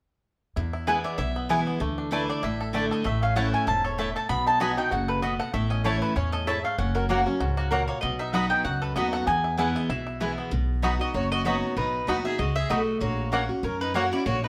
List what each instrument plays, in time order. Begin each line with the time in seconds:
0.56 upright bass E2, steel-string acoustic guitar E2, five-string banjo E4
0.73 five-string banjo E4
0.87 steel-string acoustic guitar E3 G#3 B3 E4, mandolin B3 E4 B4 G#5, five-string banjo B3
1.04 five-string banjo E4, mandolin D5
1.18 upright bass B1, steel-string acoustic guitar B2, five-string banjo E4, mandolin E5
1.36 five-string banjo B3
1.49 steel-string acoustic guitar E3 G#3 B3 E4, mandolin B3 E4 B4 G#5, five-string banjo E4
1.67 five-string banjo B3
1.80 upright bass D2, steel-string acoustic guitar D3, five-string banjo A3
1.98 five-string banjo D4
2.11 steel-string acoustic guitar D3 A3 D4 E4, mandolin A3 E4 B4 D5 A5, five-string banjo A3
2.29 five-string banjo D4, mandolin D5
2.43 upright bass A1, steel-string acoustic guitar A2, five-string banjo E4, mandolin E5
2.61 five-string banjo A4
2.73 steel-string acoustic guitar D3 A3 D4 E4, mandolin A3 E4 D5 A5, five-string banjo A3
2.91 five-string banjo A4, mandolin D#5
3.04 upright bass A1, steel-string acoustic guitar A2, five-string banjo A3, mandolin E5
3.22 five-string banjo C#4, mandolin F5
3.36 steel-string acoustic guitar E3 A3 C#4 E4, mandolin A3 E4 C#5 F#5 A5, five-string banjo A3
3.53 five-string banjo C#4, mandolin G#5
3.67 upright bass E1, steel-string acoustic guitar G#2, five-string banjo E4, mandolin A5
3.84 five-string banjo A4, mandolin C#5
3.98 steel-string acoustic guitar A2, mandolin A3 E4 C#5 E5 A5, five-string banjo A3
4.16 five-string banjo A4, mandolin A5
4.29 upright bass B1, steel-string acoustic guitar B2, five-string banjo B3, mandolin B5
4.46 five-string banjo D#4, mandolin A5
4.60 steel-string acoustic guitar F#3 B3 D#4 F#4, mandolin B3 F#4 D#5 G#5 B5, five-string banjo B3
4.77 five-string banjo D#4, steel-string acoustic guitar D#4 F#4, mandolin G5
4.91 upright bass F#1, steel-string acoustic guitar C#3, five-string banjo F#4, mandolin F#5
5.08 five-string banjo A4, mandolin B4
5.22 steel-string acoustic guitar B2, five-string banjo B3, mandolin B3 F#4 D#5 B5
5.40 five-string banjo A4, mandolin F#5
5.54 upright bass A1, steel-string acoustic guitar A2, five-string banjo A3, mandolin E5
5.70 five-string banjo C#4, mandolin D#5
5.84 steel-string acoustic guitar E3 A3 C#4 E4, mandolin A3 E4 C#5 A5, five-string banjo E4
6.02 five-string banjo A4, mandolin B4
6.16 upright bass E2, steel-string acoustic guitar A2, five-string banjo C#4, mandolin C#5
6.32 five-string banjo A4, mandolin D#5
6.47 steel-string acoustic guitar G#2, mandolin A3 E4 C#5 E5 A5, five-string banjo E4
6.64 five-string banjo A3, mandolin F5
6.78 upright bass F#1, steel-string acoustic guitar F#2, five-string banjo C#4, mandolin F#5
6.95 five-string banjo F#4, mandolin A#4
7.09 steel-string acoustic guitar F#3 A#3 C#4 F#4, mandolin A#3 F#4 C#5 F#5, five-string banjo A#3
7.26 five-string banjo C#4, steel-string acoustic guitar C#4 F#4
7.40 upright bass C#2, steel-string acoustic guitar G#2, five-string banjo F#4
7.57 five-string banjo A#3, mandolin F#4
7.71 steel-string acoustic guitar A#2, mandolin A#3 F#4 A#4 C#5 F#5, five-string banjo F#4
7.88 five-string banjo A#3, mandolin C#5
8.01 upright bass B1, steel-string acoustic guitar B2, five-string banjo B3, mandolin D#5
8.19 five-string banjo D#4, mandolin E5
8.33 steel-string acoustic guitar F#3 B3 D#4 F#4, five-string banjo B3, mandolin B3 F#4 D#5 F#5 B5
8.50 five-string banjo D#4, mandolin G5
8.65 upright bass C#2, steel-string acoustic guitar F#2, five-string banjo F#4, mandolin F#5
8.82 five-string banjo A4, mandolin B4
8.96 upright bass D#2, steel-string acoustic guitar F#3 B3 D#4 F#4, five-string banjo B3, mandolin B3 F#4 D#5 B5
9.13 five-string banjo A4, mandolin F#5
9.27 upright bass E2, steel-string acoustic guitar E2, five-string banjo B3, mandolin G#5
9.44 five-string banjo E4
9.57 steel-string acoustic guitar E3 G#3 B3 E4, mandolin B3 E4 B4 F#5 G#5, five-string banjo E4
9.75 five-string banjo E4, mandolin D#5
9.89 upright bass B1, steel-string acoustic guitar B2, five-string banjo E4, mandolin E5
10.07 five-string banjo E4
10.20 steel-string acoustic guitar E3 G#3 B3 E4, mandolin B3 E4 B4 G#5, five-string banjo E4
10.38 five-string banjo B3
10.51 upright bass B1, steel-string acoustic guitar B2
10.82 steel-string acoustic guitar F#3 B3 D#4 F#4, mandolin B3 F#4 D#5 B5, five-string banjo B3 D#4 F#4
10.99 steel-string acoustic guitar D#4 F#4, fiddle F#4, mandolin D#5
11.14 upright bass F#1, steel-string acoustic guitar F#2, fiddle F#4, mandolin C#5
11.32 fiddle F#4, mandolin D#5
11.45 steel-string acoustic guitar F#3 B3 D#4 F#4, mandolin B3 F#4 C#5 D#5 B5, five-string banjo B3 D#4 F#4, fiddle F#4
11.77 upright bass B1, steel-string acoustic guitar B2, fiddle D#4, mandolin B4
12.07 upright bass D#2, steel-string acoustic guitar F#3 B3 D#4 F#4, mandolin B3 F#4 D#5 B5, five-string banjo B3 D#4 F#4
12.24 steel-string acoustic guitar D#4 F#4, fiddle G#4, mandolin E5
12.39 upright bass C#2, steel-string acoustic guitar G#3, fiddle F#4, mandolin D#5
12.56 fiddle G#4, mandolin E5
12.70 upright bass B1, steel-string acoustic guitar A3, mandolin B3 F#4 D#5 B5, five-string banjo B3 D#4 F#4, fiddle F#4
13.01 upright bass A#1, steel-string acoustic guitar A#3, fiddle F#4, mandolin C#5
13.32 steel-string acoustic guitar A#3 C#4 F#4, mandolin A#3 F#4 C#5 F#5, five-string banjo A#3 C#4 F#4
13.49 steel-string acoustic guitar C#4 F#4
13.63 upright bass F#2, steel-string acoustic guitar C#4, fiddle C#4, mandolin A#4
13.81 fiddle D#4, mandolin B4
13.94 steel-string acoustic guitar A#3 C#4 F#4, mandolin A#3 F#4 C#5 F#5, five-string banjo A#3 C#4 F#4, fiddle F#4
14.12 steel-string acoustic guitar C#4 F#4, fiddle E4, mandolin D5
14.26 upright bass A#1, steel-string acoustic guitar A#3, fiddle F#4, mandolin C#5
14.43 fiddle D#4, mandolin B4